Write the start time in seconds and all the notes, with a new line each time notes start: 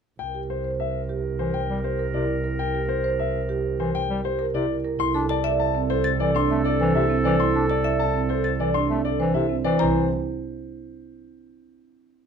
0.19 C2 A#4 G5
0.34 G4
0.50 C5
0.64 C5
0.80 E5
1.09 G4
1.39 E3 C5
1.54 G5
1.69 G3
1.84 G4 C5
1.99 A#4
2.14 C3 E4 D5
2.44 A#4
2.59 G5
2.74 G4
2.89 C5
3.04 C5
3.19 E5
3.49 G4
3.80 E3 C5
3.95 G5
4.10 G3
4.24 G4 C5
4.39 A#4
4.54 C3 E4 D5
4.84 A#4
4.99 C2 E4 A4 C6
5.14 D4 A4
5.29 D5 A5
5.44 D5 E5
5.60 A5
5.75 C4
5.90 A4 C5
6.04 A6
6.20 E3 D5
6.35 D4 C6
6.50 A3 C4
6.65 A4 D5
6.80 E3 C5
6.95 C3 E4 E5
7.09 C4
7.25 E3 C5 D5
7.40 E4 C6
7.55 D4 A4
7.70 D5 A5
7.84 D5 E5
7.99 A5
8.14 C4
8.29 A4 C5
8.44 A6
8.60 E3 D5
8.74 D4 C6
8.89 A3 C4
9.05 A4 D5
9.20 E3 C5
9.34 C3 E4 E5
9.49 C4
9.64 E3 C5 D5
9.79 C2 E3 E4 C5 A#5